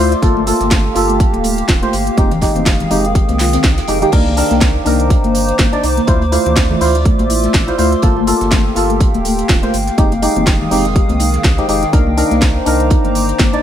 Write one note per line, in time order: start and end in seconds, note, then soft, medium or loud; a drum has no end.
0.00 0.15 D2 medium
0.00 0.10 A3 medium
0.00 0.13 E4 medium
0.00 0.13 F4 medium
0.00 1.01 F4 medium
0.00 0.13 C5 loud
0.00 0.19 C5 medium
0.00 0.21 D5 medium
0.00 0.21 E5 medium
0.00 1.01 C6 medium
0.00 0.19 D6 medium
0.00 1.01 D6 medium
0.00 0.23 E6 medium
0.12 snare soft
0.12 closed hi-hat soft
0.22 0.53 G1 loud
0.22 0.44 A#3 medium
0.22 0.31 F4 medium
0.22 0.44 F4 medium
0.22 2.18 G4 medium
0.22 2.16 A4 medium
0.22 0.44 A4 loud
0.22 4.09 F5 medium
0.22 4.09 G5 medium
0.22 kick loud
0.22 closed hi-hat medium
0.22 high conga medium
0.36 0.42 A3 medium
0.36 high conga medium
0.46 0.93 A#3 medium
0.46 0.93 F4 medium
0.46 0.93 A4 loud
0.46 4.91 F5 medium
0.46 closed hi-hat medium
0.46 open hi-hat loud
0.60 0.90 G1 medium
0.60 snare medium
0.60 closed hi-hat medium
0.60 high conga medium
0.71 0.83 A3 medium
0.71 2.96 A#3 medium
0.71 kick loud
0.71 snare loud
0.71 closed hi-hat medium
0.95 1.26 G1 medium
0.95 1.79 A#3 loud
0.95 1.04 F4 medium
0.95 1.79 F4 medium
0.95 1.80 A4 loud
0.95 closed hi-hat medium
0.95 open hi-hat medium
1.09 1.16 A3 medium
1.09 closed hi-hat medium
1.20 kick loud
1.20 closed hi-hat medium
1.34 1.63 D1 loud
1.34 closed hi-hat soft
1.34 high conga medium
1.44 1.56 A3 medium
1.44 closed hi-hat medium
1.44 open hi-hat loud
1.58 closed hi-hat soft
1.58 closed hi-hat medium
1.69 1.86 D1 loud
1.69 1.77 F4 medium
1.69 kick loud
1.69 snare loud
1.69 closed hi-hat medium
1.82 1.89 A3 medium
1.82 1.94 A#3 medium
1.82 1.95 F4 medium
1.82 1.95 C5 medium
1.82 closed hi-hat soft
1.93 2.10 G1 medium
1.93 closed hi-hat medium
1.93 open hi-hat medium
2.07 closed hi-hat medium
2.17 2.48 F1 loud
2.17 6.08 D#3 medium
2.17 2.32 G#3 medium
2.17 4.11 G#3 medium
2.17 2.30 C4 medium
2.17 2.32 D#4 medium
2.17 2.33 G4 loud
2.17 4.11 D#6 loud
2.17 kick loud
2.17 closed hi-hat medium
2.17 high conga medium
2.29 4.13 G#4 medium
2.29 closed hi-hat soft
2.29 high conga medium
2.29 low conga medium
2.42 2.88 G#3 medium
2.42 2.88 D#4 medium
2.42 2.50 G4 medium
2.42 2.89 G4 medium
2.42 kick medium
2.42 snare loud
2.42 closed hi-hat medium
2.42 open hi-hat loud
2.55 2.85 F1 medium
2.55 2.62 C4 medium
2.55 closed hi-hat medium
2.55 high conga medium
2.55 low conga medium
2.66 kick loud
2.66 snare loud
2.66 closed hi-hat medium
2.80 4.92 G5 medium
2.80 closed hi-hat soft
2.80 low conga medium
2.90 3.21 F1 medium
2.90 3.05 G#3 medium
2.90 3.03 C4 medium
2.90 3.06 D#4 medium
2.90 3.06 G4 loud
2.90 closed hi-hat medium
2.90 open hi-hat medium
3.05 closed hi-hat medium
3.15 3.23 G4 medium
3.15 kick loud
3.15 closed hi-hat medium
3.29 3.58 C2 loud
3.29 3.35 C4 medium
3.29 closed hi-hat soft
3.29 high conga medium
3.39 3.52 F4 medium
3.39 snare loud
3.39 snare medium
3.39 closed hi-hat medium
3.39 open hi-hat loud
3.53 3.60 C4 medium
3.53 snare loud
3.53 closed hi-hat medium
3.64 3.81 C2 loud
3.64 3.72 D#4 medium
3.64 kick loud
3.64 snare loud
3.64 closed hi-hat medium
3.78 snare loud
3.78 closed hi-hat soft
3.78 closed hi-hat medium
3.88 4.05 F1 medium
3.88 3.99 G#3 medium
3.88 3.99 D#4 medium
3.88 3.99 G4 loud
3.88 4.00 G#4 medium
3.88 closed hi-hat medium
3.88 open hi-hat medium
4.02 4.10 G#3 medium
4.02 4.10 D#4 medium
4.02 4.11 G4 loud
4.02 4.10 G4 loud
4.02 snare soft
4.02 closed hi-hat medium
4.12 4.43 C2 loud
4.12 4.25 A#3 medium
4.12 4.34 D4 medium
4.12 4.34 D#4 medium
4.12 4.34 A#4 loud
4.12 7.99 C5 medium
4.12 6.06 A#5 medium
4.12 7.99 D6 medium
4.12 kick loud
4.12 closed hi-hat medium
4.12 crash medium
4.12 high conga medium
4.26 6.87 C5 medium
4.26 high conga medium
4.37 4.83 D4 medium
4.37 4.45 D#4 medium
4.37 4.83 D#4 medium
4.37 4.84 A#4 loud
4.37 closed hi-hat medium
4.37 open hi-hat loud
4.51 4.80 C2 medium
4.51 4.57 A#3 medium
4.51 snare medium
4.51 closed hi-hat medium
4.51 high conga medium
4.61 kick loud
4.61 snare loud
4.61 closed hi-hat medium
4.61 closed hi-hat loud
4.85 5.16 C2 loud
4.85 4.98 A#3 medium
4.85 5.69 D4 loud
4.85 5.70 D#4 medium
4.85 5.70 A#4 loud
4.85 closed hi-hat medium
4.85 open hi-hat medium
4.93 8.70 D6 medium
5.00 6.08 A#5 medium
5.00 closed hi-hat medium
5.10 5.18 D#4 medium
5.10 kick loud
5.10 closed hi-hat medium
5.24 5.53 G1 loud
5.24 5.30 A#3 medium
5.24 closed hi-hat soft
5.24 high conga loud
5.35 closed hi-hat medium
5.35 open hi-hat loud
5.48 closed hi-hat soft
5.48 closed hi-hat medium
5.59 5.76 G1 loud
5.59 5.71 A#3 medium
5.59 kick loud
5.59 snare loud
5.59 closed hi-hat medium
5.72 5.85 D4 medium
5.72 5.85 D#4 medium
5.72 5.85 D5 medium
5.72 closed hi-hat soft
5.84 6.00 C2 medium
5.84 5.92 D#4 medium
5.84 closed hi-hat medium
5.84 open hi-hat medium
5.97 6.03 A#3 medium
5.97 snare soft
5.97 closed hi-hat medium
6.07 6.38 D2 loud
6.07 6.22 E4 medium
6.07 6.23 F4 medium
6.07 8.82 F4 medium
6.07 6.23 C5 loud
6.07 8.01 D5 medium
6.07 8.01 E5 medium
6.07 kick loud
6.07 closed hi-hat medium
6.07 high conga medium
6.22 closed hi-hat soft
6.22 high conga medium
6.32 6.44 A3 medium
6.32 6.78 E4 medium
6.32 6.79 F4 medium
6.32 6.79 C5 loud
6.32 closed hi-hat medium
6.32 open hi-hat loud
6.46 6.75 D2 medium
6.46 closed hi-hat medium
6.46 high conga medium
6.46 low conga medium
6.56 6.65 E4 medium
6.56 kick loud
6.56 snare loud
6.56 closed hi-hat medium
6.70 6.77 A3 medium
6.70 low conga loud
6.81 7.11 D2 loud
6.81 6.96 E4 medium
6.81 6.96 F4 medium
6.81 6.96 C5 loud
6.81 open hi-hat medium
6.95 8.82 C6 medium
6.95 8.03 E6 medium
6.95 closed hi-hat medium
7.05 7.17 A3 medium
7.05 kick loud
7.05 closed hi-hat medium
7.19 7.48 A1 loud
7.19 closed hi-hat soft
7.19 high conga loud
7.30 7.38 E4 medium
7.30 closed hi-hat medium
7.30 open hi-hat loud
7.44 7.50 A3 medium
7.44 snare medium
7.44 closed hi-hat medium
7.54 7.71 A1 loud
7.54 kick loud
7.54 snare loud
7.54 closed hi-hat medium
7.68 7.76 E4 medium
7.68 7.76 F4 medium
7.68 7.76 C5 medium
7.68 snare soft
7.68 closed hi-hat soft
7.78 7.95 D2 medium
7.78 7.91 A3 medium
7.78 7.93 E4 medium
7.78 7.93 F4 medium
7.78 7.94 C5 loud
7.78 closed hi-hat medium
7.78 open hi-hat loud
7.92 snare soft
7.92 closed hi-hat medium
8.02 8.33 G1 loud
8.02 8.24 A#3 medium
8.02 8.24 F4 medium
8.02 8.11 F4 medium
8.02 9.98 G4 medium
8.02 9.96 A4 medium
8.02 8.24 A4 loud
8.02 11.89 F5 medium
8.02 11.89 G5 medium
8.02 kick loud
8.02 closed hi-hat medium
8.02 high conga medium
8.17 8.23 A3 medium
8.17 high conga medium
8.27 8.73 A#3 medium
8.27 8.74 F4 medium
8.27 8.74 A4 loud
8.27 closed hi-hat medium
8.27 open hi-hat loud
8.39 8.70 G1 medium
8.39 10.59 A#3 medium
8.39 snare medium
8.39 closed hi-hat medium
8.39 high conga medium
8.51 8.64 A3 medium
8.51 12.72 F5 medium
8.51 kick loud
8.51 snare loud
8.51 closed hi-hat medium
8.75 9.07 G1 loud
8.75 9.59 A#3 loud
8.75 9.60 F4 medium
8.75 8.84 F4 medium
8.75 9.60 A4 loud
8.75 closed hi-hat medium
8.75 open hi-hat loud
8.90 8.96 A3 medium
8.90 closed hi-hat medium
9.00 kick loud
9.00 closed hi-hat medium
9.14 9.43 D1 loud
9.14 closed hi-hat soft
9.14 high conga loud
9.25 9.37 A3 medium
9.25 closed hi-hat medium
9.25 open hi-hat loud
9.39 closed hi-hat medium
9.39 closed hi-hat soft
9.49 9.66 D1 loud
9.49 9.57 F4 medium
9.49 kick loud
9.49 snare loud
9.49 closed hi-hat medium
9.63 9.69 A3 medium
9.63 9.75 A#3 medium
9.63 9.75 F4 medium
9.63 9.75 C5 medium
9.63 closed hi-hat soft
9.74 9.91 G1 medium
9.74 closed hi-hat medium
9.74 open hi-hat loud
9.87 snare medium
9.87 closed hi-hat medium
9.98 10.29 F1 loud
9.98 13.62 D#3 medium
9.98 10.13 G#3 medium
9.98 11.91 G#3 medium
9.98 10.10 C4 medium
9.98 10.13 D#4 medium
9.98 10.13 G4 loud
9.98 11.91 D#6 medium
9.98 kick loud
9.98 closed hi-hat medium
9.98 high conga medium
10.12 closed hi-hat soft
10.12 high conga medium
10.22 10.69 G#3 medium
10.22 10.69 D#4 medium
10.22 10.31 G4 medium
10.22 10.69 G4 loud
10.22 closed hi-hat medium
10.22 open hi-hat loud
10.36 10.65 F1 medium
10.36 10.42 C4 medium
10.36 11.93 G#4 medium
10.36 closed hi-hat medium
10.36 high conga medium
10.36 low conga medium
10.47 kick loud
10.47 snare loud
10.47 closed hi-hat medium
10.61 low conga medium
10.71 11.02 F1 loud
10.71 10.86 G#3 medium
10.71 10.83 C4 medium
10.71 10.86 D#4 medium
10.71 10.86 G4 loud
10.71 open hi-hat loud
10.71 open hi-hat medium
10.85 12.72 G5 medium
10.85 closed hi-hat medium
10.96 11.04 G4 medium
10.96 kick loud
10.96 closed hi-hat medium
11.09 11.38 C2 loud
11.09 11.16 C4 medium
11.09 closed hi-hat soft
11.09 high conga medium
11.20 11.25 D#4 medium
11.20 closed hi-hat medium
11.20 open hi-hat loud
11.33 snare medium
11.33 closed hi-hat soft
11.44 11.61 C2 loud
11.44 11.56 G4 medium
11.44 kick loud
11.44 snare loud
11.44 closed hi-hat medium
11.58 11.66 G#3 medium
11.58 11.66 D#4 medium
11.58 11.67 G4 medium
11.58 11.64 C5 medium
11.58 snare soft
11.58 closed hi-hat soft
11.68 11.86 F1 medium
11.68 11.83 G#3 loud
11.68 11.84 D#4 medium
11.68 11.84 G4 loud
11.68 closed hi-hat medium
11.68 open hi-hat medium
11.83 11.92 D#4 medium
11.83 snare soft
11.83 closed hi-hat soft
11.93 12.24 C2 loud
11.93 12.05 A#3 medium
11.93 12.14 D4 medium
11.93 12.14 D#4 medium
11.93 12.15 A#4 loud
11.93 13.62 C5 medium
11.93 13.62 A#5 medium
11.93 13.62 D6 medium
11.93 kick loud
11.93 closed hi-hat medium
11.93 high conga medium
12.07 13.62 C5 medium
12.07 high conga medium
12.17 12.64 D4 medium
12.17 12.64 D#4 medium
12.17 12.26 D#4 medium
12.17 12.64 A#4 loud
12.17 closed hi-hat medium
12.17 open hi-hat loud
12.31 12.60 C2 medium
12.31 12.38 A#3 medium
12.31 snare medium
12.31 closed hi-hat medium
12.31 high conga medium
12.42 kick loud
12.42 snare loud
12.42 closed hi-hat medium
12.65 12.97 C2 loud
12.65 12.78 A#3 medium
12.65 13.50 D4 loud
12.65 13.50 D#4 medium
12.65 13.51 A#4 loud
12.65 closed hi-hat medium
12.65 open hi-hat medium
12.80 13.62 A#5 medium
12.80 13.62 D6 medium
12.80 closed hi-hat medium
12.90 12.99 D#4 medium
12.90 kick loud
12.90 closed hi-hat medium
13.05 13.34 G1 loud
13.05 13.11 A#3 medium
13.05 closed hi-hat soft
13.05 high conga medium
13.15 closed hi-hat medium
13.15 open hi-hat loud
13.29 closed hi-hat medium
13.29 closed hi-hat soft
13.39 13.56 G1 loud
13.39 13.52 A#3 medium
13.39 kick loud
13.39 snare loud
13.39 closed hi-hat medium
13.53 13.62 D4 medium
13.53 13.62 D#4 medium
13.53 13.62 D5 medium
13.53 closed hi-hat soft